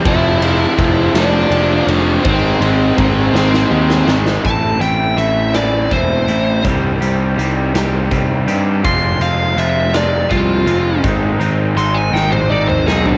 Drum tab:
RD |x-x-x-x-x-x-|x-x-x-------|------------|------------|
HH |------------|------------|x-x-x-x-x-x-|x-x-x-x-x-x-|
SD |------o-----|------oo-ooo|------o-----|------o-----|
T1 |------------|------------|------------|------------|
T2 |------------|------------|------------|------------|
FT |------------|------------|------------|------------|
BD |o---o-------|o---o-------|o-------o---|o-------o---|

RD |------------|------------|
HH |x-x-x-x-x-x-|x-x-x-------|
SD |------o-----|------o---o-|
T1 |------------|-------o----|
T2 |------------|---------o--|
FT |------------|-----------o|
BD |o-------o---|o-----------|